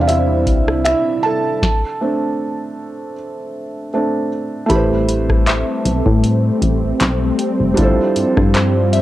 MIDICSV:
0, 0, Header, 1, 6, 480
1, 0, Start_track
1, 0, Key_signature, 0, "minor"
1, 0, Tempo, 769231
1, 1013, Time_signature, 4, 2, 24, 8
1, 5627, End_track
2, 0, Start_track
2, 0, Title_t, "Synth pluck"
2, 0, Program_c, 0, 84
2, 2929, Note_on_c, 0, 83, 81
2, 3414, Note_on_c, 0, 76, 64
2, 4713, Note_off_c, 0, 83, 0
2, 5068, Note_off_c, 0, 76, 0
2, 5333, Note_on_c, 0, 72, 64
2, 5571, Note_on_c, 0, 76, 61
2, 5627, Note_off_c, 0, 72, 0
2, 5627, Note_off_c, 0, 76, 0
2, 5627, End_track
3, 0, Start_track
3, 0, Title_t, "Felt piano"
3, 0, Program_c, 1, 0
3, 0, Control_c, 1, 64, 127
3, 0, Note_on_c, 1, 52, 54
3, 0, Note_on_c, 1, 60, 66
3, 0, Note_on_c, 1, 62, 64
3, 0, Note_on_c, 1, 71, 52
3, 0, Note_on_c, 1, 72, 85
3, 0, Note_on_c, 1, 74, 84
3, 8, Note_on_c, 1, 77, 77
3, 47, Note_on_c, 1, 76, 97
3, 63, Note_on_c, 1, 64, 79
3, 513, Note_off_c, 1, 64, 0
3, 518, Note_off_c, 1, 76, 0
3, 528, Note_on_c, 1, 76, 101
3, 543, Note_on_c, 1, 64, 80
3, 762, Note_off_c, 1, 64, 0
3, 767, Note_on_c, 1, 81, 96
3, 778, Note_off_c, 1, 76, 0
3, 783, Note_on_c, 1, 69, 72
3, 1022, Note_off_c, 1, 62, 0
3, 1022, Control_c, 1, 64, 0
3, 1023, Note_off_c, 1, 52, 0
3, 1023, Note_off_c, 1, 60, 0
3, 1024, Note_off_c, 1, 77, 0
3, 1025, Note_off_c, 1, 72, 0
3, 1026, Note_off_c, 1, 71, 0
3, 1028, Note_off_c, 1, 74, 0
3, 1137, Control_c, 1, 64, 127
3, 1255, Note_on_c, 1, 57, 58
3, 1259, Note_on_c, 1, 60, 51
3, 1262, Note_on_c, 1, 62, 65
3, 1949, Note_off_c, 1, 57, 0
3, 1951, Note_off_c, 1, 60, 0
3, 1952, Note_off_c, 1, 62, 0
3, 2425, Note_off_c, 1, 81, 0
3, 2433, Note_off_c, 1, 69, 0
3, 2455, Note_on_c, 1, 57, 50
3, 2457, Note_on_c, 1, 60, 49
3, 2461, Note_on_c, 1, 62, 60
3, 2670, Note_off_c, 1, 57, 0
3, 2671, Note_off_c, 1, 60, 0
3, 2673, Note_off_c, 1, 62, 0
3, 2908, Note_on_c, 1, 57, 80
3, 2923, Note_on_c, 1, 64, 75
3, 2937, Note_on_c, 1, 67, 75
3, 2941, Control_c, 1, 64, 0
3, 2951, Note_on_c, 1, 71, 71
3, 2966, Note_on_c, 1, 72, 87
3, 3057, Control_c, 1, 64, 127
3, 4815, Note_off_c, 1, 57, 0
3, 4823, Note_off_c, 1, 64, 0
3, 4830, Note_off_c, 1, 67, 0
3, 4830, Note_on_c, 1, 55, 79
3, 4837, Note_off_c, 1, 71, 0
3, 4841, Note_on_c, 1, 62, 71
3, 4844, Note_off_c, 1, 72, 0
3, 4853, Note_on_c, 1, 64, 73
3, 4860, Control_c, 1, 64, 0
3, 4865, Note_on_c, 1, 65, 72
3, 4875, Note_on_c, 1, 69, 73
3, 4887, Note_on_c, 1, 72, 88
3, 4982, Control_c, 1, 64, 127
3, 5627, Note_off_c, 1, 55, 0
3, 5627, Note_off_c, 1, 62, 0
3, 5627, Note_off_c, 1, 64, 0
3, 5627, Note_off_c, 1, 65, 0
3, 5627, Note_off_c, 1, 69, 0
3, 5627, Note_off_c, 1, 72, 0
3, 5627, End_track
4, 0, Start_track
4, 0, Title_t, "Analog synth pad"
4, 0, Program_c, 2, 89
4, 0, Note_on_c, 2, 48, 80
4, 0, Note_on_c, 2, 55, 81
4, 0, Note_on_c, 2, 60, 74
4, 0, Note_on_c, 2, 62, 72
4, 0, Note_on_c, 2, 64, 92
4, 988, Note_off_c, 2, 55, 0
4, 992, Note_off_c, 2, 48, 0
4, 992, Note_off_c, 2, 60, 0
4, 993, Note_off_c, 2, 62, 0
4, 993, Note_off_c, 2, 64, 0
4, 2933, Note_on_c, 2, 55, 83
4, 2933, Note_on_c, 2, 60, 89
4, 2935, Note_on_c, 2, 57, 74
4, 4835, Note_off_c, 2, 57, 0
4, 4854, Note_on_c, 2, 53, 79
4, 5627, Note_off_c, 2, 53, 0
4, 5627, Note_off_c, 2, 55, 0
4, 5627, Note_off_c, 2, 60, 0
4, 5627, End_track
5, 0, Start_track
5, 0, Title_t, "FM bass"
5, 0, Program_c, 3, 39
5, 0, Note_on_c, 3, 40, 89
5, 292, Note_on_c, 3, 36, 89
5, 301, Note_off_c, 3, 40, 0
5, 588, Note_off_c, 3, 36, 0
5, 2933, Note_on_c, 3, 33, 113
5, 3517, Note_off_c, 3, 33, 0
5, 3652, Note_on_c, 3, 35, 90
5, 3756, Note_off_c, 3, 35, 0
5, 3781, Note_on_c, 3, 45, 100
5, 4062, Note_off_c, 3, 45, 0
5, 4131, Note_on_c, 3, 33, 95
5, 4323, Note_off_c, 3, 33, 0
5, 4373, Note_on_c, 3, 35, 97
5, 4565, Note_off_c, 3, 35, 0
5, 4744, Note_on_c, 3, 29, 90
5, 4831, Note_off_c, 3, 29, 0
5, 4852, Note_on_c, 3, 31, 114
5, 4956, Note_off_c, 3, 31, 0
5, 5095, Note_on_c, 3, 43, 49
5, 5146, Note_off_c, 3, 43, 0
5, 5223, Note_on_c, 3, 43, 104
5, 5627, Note_off_c, 3, 43, 0
5, 5627, End_track
6, 0, Start_track
6, 0, Title_t, "Drums"
6, 54, Note_on_c, 9, 42, 76
6, 117, Note_off_c, 9, 42, 0
6, 291, Note_on_c, 9, 36, 97
6, 293, Note_on_c, 9, 42, 63
6, 353, Note_off_c, 9, 36, 0
6, 356, Note_off_c, 9, 42, 0
6, 426, Note_on_c, 9, 37, 93
6, 488, Note_off_c, 9, 37, 0
6, 533, Note_on_c, 9, 42, 66
6, 539, Note_on_c, 9, 26, 114
6, 596, Note_off_c, 9, 42, 0
6, 601, Note_off_c, 9, 26, 0
6, 1013, Note_on_c, 9, 36, 109
6, 1017, Note_on_c, 9, 38, 91
6, 1075, Note_off_c, 9, 36, 0
6, 1080, Note_off_c, 9, 38, 0
6, 2932, Note_on_c, 9, 36, 116
6, 2932, Note_on_c, 9, 42, 73
6, 2994, Note_off_c, 9, 42, 0
6, 2995, Note_off_c, 9, 36, 0
6, 3173, Note_on_c, 9, 42, 70
6, 3236, Note_off_c, 9, 42, 0
6, 3303, Note_on_c, 9, 36, 93
6, 3305, Note_on_c, 9, 37, 70
6, 3365, Note_off_c, 9, 36, 0
6, 3367, Note_off_c, 9, 37, 0
6, 3412, Note_on_c, 9, 42, 62
6, 3417, Note_on_c, 9, 39, 108
6, 3475, Note_off_c, 9, 42, 0
6, 3479, Note_off_c, 9, 39, 0
6, 3653, Note_on_c, 9, 42, 69
6, 3716, Note_off_c, 9, 42, 0
6, 3781, Note_on_c, 9, 36, 101
6, 3843, Note_off_c, 9, 36, 0
6, 3892, Note_on_c, 9, 42, 77
6, 3954, Note_off_c, 9, 42, 0
6, 4130, Note_on_c, 9, 36, 94
6, 4131, Note_on_c, 9, 42, 70
6, 4192, Note_off_c, 9, 36, 0
6, 4194, Note_off_c, 9, 42, 0
6, 4370, Note_on_c, 9, 42, 71
6, 4375, Note_on_c, 9, 39, 113
6, 4432, Note_off_c, 9, 42, 0
6, 4437, Note_off_c, 9, 39, 0
6, 4611, Note_on_c, 9, 42, 69
6, 4673, Note_off_c, 9, 42, 0
6, 4851, Note_on_c, 9, 42, 74
6, 4852, Note_on_c, 9, 36, 115
6, 4913, Note_off_c, 9, 42, 0
6, 4914, Note_off_c, 9, 36, 0
6, 5092, Note_on_c, 9, 42, 67
6, 5154, Note_off_c, 9, 42, 0
6, 5223, Note_on_c, 9, 36, 99
6, 5224, Note_on_c, 9, 37, 73
6, 5285, Note_off_c, 9, 36, 0
6, 5286, Note_off_c, 9, 37, 0
6, 5332, Note_on_c, 9, 42, 64
6, 5337, Note_on_c, 9, 39, 116
6, 5394, Note_off_c, 9, 42, 0
6, 5399, Note_off_c, 9, 39, 0
6, 5572, Note_on_c, 9, 42, 66
6, 5627, Note_off_c, 9, 42, 0
6, 5627, End_track
0, 0, End_of_file